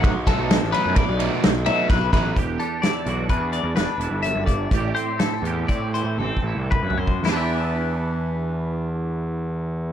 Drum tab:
RD |x--x--x--x--x--x--x--x--x--x--|------------------------------|------------------------------|------------------------------|
HH |------------------------------|x--x--x--x--x--x--x--x--x--x--|x--x--x--x--x--x--------------|o-----------------------------|
SD |---o--o-----------o-----o--o--|------o-----------o-----------|------o-----------------------|o-----------------------------|
T1 |------------------------------|------------------------------|------------------o-----------|------------------------------|
T2 |------------------------------|------------------------------|------------------------o-----|------------------------------|
FT |------------------------------|------------------------------|--------------------------o---|------------------------------|
BD |o--o--------o-----------o--o--|o-----------o--------------o--|o-----------o-------o---o---o-|------------------------------|